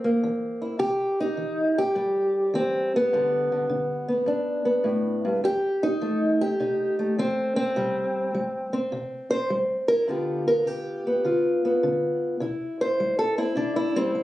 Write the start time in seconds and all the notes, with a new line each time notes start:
Already playing: G2 C4
0.04 A#3
0.24 E3
0.62 E4
0.79 C3 G4
1.20 D#4
1.37 E3
1.78 G4
1.95 G2 G3
2.54 E3 C4
2.96 B3
3.13 G2 D3
3.52 D3
3.69 D3
4.08 B3
4.26 G2 D4
4.65 B3
4.84 A2
5.25 G2
5.44 F2 G4
5.83 D#4
6.01 F3 A3
6.41 G4
6.60 C3 D#4
6.99 A3
7.18 F3 C4
7.56 C4
7.76 C3 G3
8.35 G3
8.73 C4
8.92 C3
9.31 C4 C5
9.50 G3
9.88 E4 A#4
10.08 G2 D3 B3 F4 G4
10.48 B3 A#4
10.66 D3 G4
11.07 B3
11.24 D3 F4
11.65 B3
11.83 D3
12.40 C3 E4
12.81 C5
13.00 G3
13.19 A4
13.38 C4 E4
13.56 C3 D4
13.76 E4
13.96 G3 C4
14.15 G3